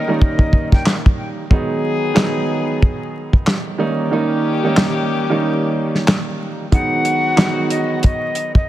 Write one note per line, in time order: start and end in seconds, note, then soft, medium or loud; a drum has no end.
0.00 1.14 G3 medium
0.00 1.14 D#4 medium
0.00 1.14 A#4 loud
0.00 0.17 D#5 medium
0.08 1.42 D#3 loud
0.08 1.42 G3 medium
0.08 1.42 A#3 medium
0.08 1.42 C#4 medium
0.08 1.42 D#4 loud
0.19 0.69 D#5 medium
0.19 kick loud
0.39 kick medium
0.53 kick medium
0.72 0.84 G5 medium
0.72 kick medium
0.72 snare soft
0.86 snare loud
0.86 clap loud
1.06 kick loud
1.50 2.12 D#3 medium
1.50 3.43 D#3 medium
1.50 2.12 F#3 medium
1.50 2.12 G#3 medium
1.50 3.43 B3 medium
1.50 2.12 B3 medium
1.50 2.12 D#4 loud
1.50 3.43 G#4 loud
1.50 kick loud
2.14 3.77 D#3 loud
2.14 3.78 F#3 medium
2.14 3.78 G#3 medium
2.14 3.79 B3 medium
2.14 3.78 D#4 loud
2.14 snare loud
2.14 clap loud
2.82 kick loud
3.33 kick medium
3.47 snare loud
3.47 clap loud
3.78 4.09 D#3 medium
3.78 6.36 D#3 medium
3.78 4.09 G3 medium
3.78 4.10 A#3 medium
3.78 4.10 C#4 medium
3.78 6.36 C#4 loud
3.78 4.10 D#4 loud
3.78 6.36 G4 loud
4.11 4.59 D#3 medium
4.11 4.59 G3 medium
4.11 4.60 A#3 medium
4.11 4.60 C#4 medium
4.11 4.60 D#4 loud
4.63 5.23 D#3 medium
4.63 5.23 G3 medium
4.63 5.23 A#3 medium
4.63 5.23 C#4 medium
4.63 5.23 D#4 loud
4.77 snare loud
4.77 clap medium
5.30 6.63 D#3 loud
5.30 6.64 G3 medium
5.30 6.64 A#3 medium
5.30 6.64 C#4 medium
5.30 6.64 D#4 loud
5.95 snare soft
6.08 snare loud
6.08 clap loud
6.72 7.33 D#3 medium
6.72 8.64 D#3 medium
6.72 7.34 F#3 medium
6.72 7.34 G#3 medium
6.72 8.64 B3 medium
6.72 7.34 B3 medium
6.72 7.34 D#4 loud
6.72 8.64 F#4 loud
6.72 7.66 F#5 loud
6.72 kick loud
6.72 closed hi-hat medium
7.05 closed hi-hat medium
7.36 8.69 D#3 loud
7.36 8.69 F#3 medium
7.36 8.69 G#3 medium
7.36 8.69 B3 medium
7.36 8.69 D#4 loud
7.36 snare loud
7.36 clap medium
7.36 closed hi-hat medium
7.70 7.99 D#5 medium
7.70 closed hi-hat medium
8.03 8.52 D#5 medium
8.03 kick loud
8.03 closed hi-hat medium
8.35 closed hi-hat medium
8.55 8.69 D#5 medium
8.55 kick medium